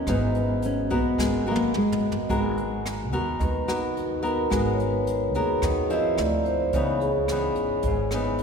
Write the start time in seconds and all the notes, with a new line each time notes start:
0.05 G#1 G#2 E3 B3 F#4 G#4, kick, cross-stick, closed hi-hat
0.09 B3 D#4 B4 D#5
0.35 closed hi-hat
0.62 C#4, closed hi-hat
0.90 B1 B3 F#4 A#4, kick, closed hi-hat
1.16 G#1 G#3 F#4 A#4, kick, snare
1.46 B3 F#4 A#4
1.51 A#3
1.56 high tom
1.74 G#3, mid tom
1.92 mid tom
2.12 floor tom
2.29 G#1 G#3 B3 F#4 A#4, kick, closed hi-hat
2.57 closed hi-hat
2.86 cross-stick, closed hi-hat
3.12 D#2 B3 F#4 A#4, closed hi-hat
3.39 D#2 D#3 B4, kick, closed hi-hat
3.68 B3 D#4 F#4 A#4, cross-stick, closed hi-hat
3.97 F#4, closed hi-hat
4.22 B3 F#4 A#4, closed hi-hat
4.50 G#1 G#3 B3 F#4 A#4 B4, kick, cross-stick, closed hi-hat
4.74 C#5
4.80 closed hi-hat
4.90 B4
5.07 A#4, closed hi-hat
5.34 D#2 B3 F#4 G#4 A#4, closed hi-hat
5.62 D#2 D#3, kick, cross-stick, closed hi-hat
5.66 F#4
5.90 F3 C4 E4 D#5, closed hi-hat
6.18 D2 D5, cross-stick, closed hi-hat
6.45 C5, closed hi-hat
6.73 C#2 C#3 E3 B3 D#4 C#5, kick, closed hi-hat
7.00 G#4, closed hi-hat
7.28 E3 B3 D#4, cross-stick, closed hi-hat
7.55 G#1, closed hi-hat
7.83 G#1, kick, closed hi-hat
7.87 G#2
8.11 E3 B3 D#4, cross-stick, closed hi-hat
8.38 closed hi-hat